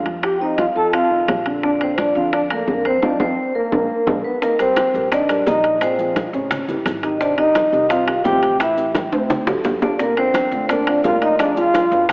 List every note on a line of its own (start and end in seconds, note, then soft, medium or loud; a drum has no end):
0.00 0.70 F2 medium
0.06 0.35 F3 medium
0.06 0.35 F4 medium
0.06 high bongo soft
0.06 high conga soft
0.06 high timbale medium
0.23 0.40 G4 medium
0.23 0.40 G5 medium
0.23 high bongo medium
0.23 high conga soft
0.23 high timbale medium
0.40 0.69 C4 medium
0.40 0.58 D#4 medium
0.40 0.69 C5 medium
0.40 0.59 D#5 medium
0.40 high conga soft
0.58 0.67 F4 medium
0.58 0.67 F5 medium
0.58 high bongo medium
0.58 high conga medium
0.58 high timbale medium
0.75 1.24 F2 medium
0.75 0.90 F3 medium
0.75 0.90 F4 medium
0.75 0.92 A4 medium
0.75 0.94 A5 medium
0.75 high bongo soft
0.93 1.07 C3 medium
0.93 1.08 C4 medium
0.93 1.43 F4 medium
0.93 1.43 F5 medium
0.93 high bongo medium
0.93 high conga soft
0.93 high timbale medium
1.10 1.39 D#3 medium
1.10 1.39 D#4 medium
1.10 high bongo soft
1.10 high conga soft
1.28 2.09 A#1 medium
1.28 high bongo soft
1.28 low bongo medium
1.28 high conga medium
1.28 high timbale medium
1.28 low timbale medium
1.46 1.60 D3 medium
1.46 1.60 D4 medium
1.46 high bongo soft
1.46 high timbale medium
1.63 1.92 D3 medium
1.63 1.71 D4 medium
1.63 1.92 D4 medium
1.63 1.72 D5 medium
1.63 high bongo medium
1.63 high conga soft
1.81 1.97 C4 medium
1.81 1.99 C5 medium
1.81 high conga soft
1.81 high timbale medium
1.98 2.13 F3 medium
1.98 2.14 D4 medium
1.98 2.13 F4 medium
1.98 2.17 D5 medium
1.98 high bongo medium
1.98 high conga medium
1.98 high timbale medium
2.15 2.64 F2 medium
2.15 2.44 D3 medium
2.15 2.45 D4 medium
2.15 2.32 F4 medium
2.15 2.34 F5 medium
2.15 high bongo soft
2.15 high conga soft
2.33 2.41 D4 medium
2.33 2.41 D5 medium
2.33 high bongo medium
2.33 high conga soft
2.33 high timbale medium
2.50 2.65 A3 medium
2.50 2.83 A#3 medium
2.50 2.65 A4 medium
2.50 2.86 A#4 medium
2.50 high bongo soft
2.50 high conga soft
2.50 high timbale medium
2.67 3.00 F2 medium
2.67 2.82 D3 medium
2.67 2.82 D4 medium
2.67 high bongo soft
2.67 low bongo medium
2.67 high conga medium
2.85 3.00 C4 medium
2.85 3.02 C4 medium
2.85 3.03 C5 medium
2.85 3.00 C5 medium
2.85 high bongo soft
2.85 high conga soft
2.85 high timbale medium
3.02 3.15 F2 medium
3.02 3.14 C4 medium
3.02 3.19 D4 medium
3.02 3.14 D#4 medium
3.02 3.14 F4 medium
3.02 3.21 D5 medium
3.02 low bongo medium
3.02 high conga medium
3.02 high timbale medium
3.20 3.33 F2 medium
3.20 3.31 C4 medium
3.20 3.53 C4 medium
3.20 3.31 D#4 medium
3.20 3.31 F4 medium
3.20 3.53 C5 medium
3.20 low bongo medium
3.20 high conga medium
3.20 high timbale medium
3.55 4.21 A#3 medium
3.55 4.21 A#4 medium
3.72 3.85 A#1 medium
3.72 3.83 G#3 medium
3.72 3.83 A#3 medium
3.72 3.83 D4 medium
3.72 low bongo medium
3.72 high conga medium
3.72 high timbale medium
4.07 4.20 A#1 medium
4.07 4.18 G#3 medium
4.07 4.18 A#3 medium
4.07 4.18 D4 medium
4.07 low bongo medium
4.07 high conga medium
4.07 high timbale medium
4.24 4.41 B3 medium
4.24 4.41 B4 medium
4.42 4.56 D#3 medium
4.42 4.58 A#3 medium
4.42 4.56 D#4 medium
4.42 4.60 A#4 medium
4.42 4.57 D#5 medium
4.42 high bongo medium
4.42 high conga soft
4.42 maracas medium
4.59 4.88 G3 medium
4.59 5.08 C4 medium
4.59 4.88 G4 medium
4.59 4.88 A#4 medium
4.59 5.08 C5 medium
4.59 high conga soft
4.59 high timbale medium
4.59 maracas medium
4.76 high bongo medium
4.76 high conga medium
4.76 high timbale medium
4.76 maracas medium
4.94 5.43 A#1 medium
4.94 5.09 G3 medium
4.94 5.09 G4 medium
4.94 5.09 A#4 medium
4.94 high bongo soft
4.94 high conga soft
4.94 maracas soft
5.12 5.26 D#3 medium
5.12 5.44 D4 medium
5.12 5.26 D#4 medium
5.12 5.48 D5 medium
5.12 5.26 D#5 medium
5.12 high bongo medium
5.12 high conga soft
5.12 high timbale medium
5.12 maracas medium
5.29 5.44 G3 medium
5.29 5.44 G4 medium
5.29 5.44 A#4 medium
5.29 high bongo soft
5.29 high conga soft
5.29 high timbale medium
5.29 maracas medium
5.46 6.28 A#1 medium
5.46 5.75 D#3 medium
5.46 5.79 D#4 medium
5.46 5.76 D#4 medium
5.46 5.76 D#5 medium
5.46 5.83 D#5 medium
5.46 high bongo soft
5.46 low bongo medium
5.46 high conga medium
5.46 low timbale medium
5.46 maracas medium
5.64 high bongo soft
5.64 high conga soft
5.64 high timbale medium
5.64 maracas soft
5.81 5.96 F3 medium
5.81 6.14 C4 medium
5.81 5.96 F4 medium
5.81 5.96 G#4 medium
5.81 6.15 C5 medium
5.81 high bongo medium
5.81 high conga soft
5.81 high timbale medium
5.81 maracas medium
5.99 6.27 F3 medium
5.99 6.28 F4 medium
5.99 6.28 G#4 medium
5.99 high conga soft
5.99 maracas medium
6.16 high bongo medium
6.16 high conga medium
6.16 high timbale medium
6.16 maracas medium
6.33 6.66 A1 medium
6.33 6.62 C#3 medium
6.33 6.63 C#4 medium
6.33 6.63 C#5 medium
6.33 high bongo soft
6.33 maracas soft
6.51 high bongo medium
6.51 high conga soft
6.51 low conga medium
6.51 high timbale medium
6.51 maracas medium
6.68 6.84 A1 medium
6.68 6.97 E3 medium
6.68 6.97 E4 medium
6.68 6.98 G4 medium
6.68 high bongo soft
6.68 high conga soft
6.68 low conga medium
6.68 maracas medium
6.85 7.67 G#1 medium
6.85 high bongo soft
6.85 low bongo medium
6.85 high conga medium
6.85 high timbale medium
6.85 maracas medium
7.03 7.17 D#3 medium
7.03 7.19 D#4 medium
7.03 7.18 D#4 medium
7.03 7.18 G4 medium
7.03 7.20 D#5 medium
7.03 high bongo soft
7.03 high timbale medium
7.03 maracas soft
7.21 7.35 C3 medium
7.21 7.35 C4 medium
7.21 7.37 D4 medium
7.21 7.35 C5 medium
7.21 7.37 D5 medium
7.21 high bongo medium
7.21 high conga soft
7.21 maracas medium
7.37 7.66 D#3 medium
7.37 7.86 D#4 medium
7.37 7.67 D#4 medium
7.37 7.67 G4 medium
7.37 7.92 D#5 medium
7.37 high conga soft
7.37 high timbale medium
7.55 high bongo medium
7.55 high conga medium
7.55 high timbale medium
7.55 maracas medium
7.72 8.21 C2 medium
7.72 7.87 D#3 medium
7.72 7.87 D#4 medium
7.72 7.87 G4 medium
7.72 high bongo soft
7.72 high conga soft
7.72 maracas soft
7.89 8.04 C3 medium
7.89 8.04 C4 medium
7.89 8.22 F4 medium
7.89 8.05 C5 medium
7.89 8.22 F5 medium
7.89 high bongo medium
7.89 high conga soft
7.89 high timbale medium
7.89 maracas medium
8.07 8.22 D#3 medium
8.07 8.22 D#4 medium
8.07 8.22 G4 medium
8.07 high bongo soft
8.07 high conga soft
8.07 high timbale medium
8.24 9.06 A1 medium
8.24 8.54 C3 medium
8.24 8.54 C4 medium
8.24 8.57 G4 medium
8.24 8.54 C5 medium
8.24 8.61 G5 loud
8.24 high bongo soft
8.24 low bongo medium
8.24 high conga medium
8.24 low timbale medium
8.24 maracas medium
8.43 high bongo soft
8.43 high conga soft
8.43 high timbale medium
8.43 maracas soft
8.60 8.74 E3 medium
8.60 8.92 E4 medium
8.60 8.74 E4 medium
8.60 8.74 G4 medium
8.60 8.93 E5 medium
8.60 high bongo medium
8.60 high conga soft
8.60 high timbale medium
8.60 maracas medium
8.77 9.06 E3 medium
8.77 9.06 E4 medium
8.77 9.06 G4 medium
8.77 high conga soft
8.77 maracas medium
8.95 high bongo medium
8.95 high conga loud
8.95 high timbale medium
8.95 maracas medium
9.12 9.45 D2 medium
9.12 9.41 C3 medium
9.12 9.41 C4 medium
9.12 9.41 C5 medium
9.12 high bongo soft
9.12 high timbale medium
9.12 maracas soft
9.30 high bongo medium
9.30 high conga soft
9.30 low conga medium
9.30 high timbale medium
9.30 maracas medium
9.47 9.63 A1 medium
9.47 9.76 F#3 medium
9.47 9.76 F#4 medium
9.47 9.76 A4 medium
9.47 high bongo loud
9.47 high conga soft
9.47 low conga medium
9.47 low timbale medium
9.47 maracas medium
9.64 10.46 G1 medium
9.64 low bongo medium
9.64 high conga medium
9.64 low timbale medium
9.64 maracas medium
9.82 9.96 D3 medium
9.82 9.98 D4 medium
9.82 9.97 D4 medium
9.82 9.97 F4 medium
9.82 10.00 D5 medium
9.82 low bongo medium
9.82 low timbale medium
9.82 maracas soft
9.99 10.14 A#2 medium
9.99 10.16 A#3 medium
9.99 10.14 A#3 medium
9.99 10.18 A#4 medium
9.99 10.14 A#4 medium
9.99 high bongo medium
9.99 high conga soft
9.99 maracas medium
10.17 10.46 D3 medium
10.17 10.66 C4 medium
10.17 10.46 D4 medium
10.17 10.46 F4 medium
10.17 10.71 C5 medium
10.17 high conga soft
10.17 high timbale medium
10.34 high bongo medium
10.34 high conga medium
10.34 high timbale medium
10.34 maracas medium
10.51 11.00 D2 medium
10.51 10.66 D3 medium
10.51 10.67 D4 medium
10.51 10.67 F4 medium
10.51 high bongo soft
10.51 high conga soft
10.51 maracas soft
10.69 10.84 A#2 medium
10.69 10.84 A#3 medium
10.69 11.02 D4 medium
10.69 10.85 A#4 medium
10.69 11.06 D5 medium
10.69 high bongo medium
10.69 high conga soft
10.69 high timbale medium
10.69 maracas medium
10.87 11.02 D3 medium
10.87 11.02 D4 medium
10.87 11.02 F4 medium
10.87 high bongo soft
10.87 high conga soft
10.87 high timbale medium
11.04 11.86 D2 medium
11.04 11.33 A#2 medium
11.04 11.33 A#3 medium
11.04 11.21 F4 medium
11.04 11.34 A#4 medium
11.04 11.23 F5 medium
11.04 high bongo soft
11.04 low bongo medium
11.04 high conga medium
11.04 low timbale medium
11.04 maracas medium
11.22 11.38 D#4 medium
11.22 11.38 D#5 medium
11.22 high bongo soft
11.22 high conga soft
11.22 high timbale medium
11.22 maracas soft
11.39 11.54 F3 medium
11.39 11.55 D4 medium
11.39 11.54 F4 medium
11.39 11.54 G#4 medium
11.39 11.58 D5 medium
11.39 high bongo medium
11.39 high conga soft
11.39 high timbale medium
11.39 maracas medium
11.57 11.85 F3 medium
11.57 12.05 F4 medium
11.57 11.86 F4 medium
11.57 11.86 G#4 medium
11.57 12.11 F5 loud
11.57 high conga soft
11.57 maracas medium
11.74 high bongo medium
11.74 high conga medium
11.74 high timbale medium
11.74 maracas medium
11.91 12.12 G1 medium
11.91 12.12 B2 medium
11.91 12.12 B3 medium
11.91 12.12 B4 medium
11.91 high bongo soft
11.91 maracas soft
12.09 high bongo medium
12.09 high timbale medium
12.09 maracas medium